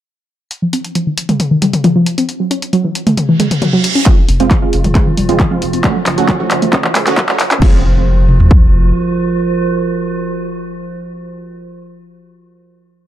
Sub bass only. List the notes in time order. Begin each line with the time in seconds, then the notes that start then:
4.29 F1
4.40 F1
4.73 F1
4.84 F1
5.17 F1
5.29 F1
5.62 F1
5.73 F1
6.06 F#1
6.18 F#1
6.51 F#1
6.62 F#1
6.95 F#1
7.07 F#1
7.40 F#1
7.51 F#1
7.62 F1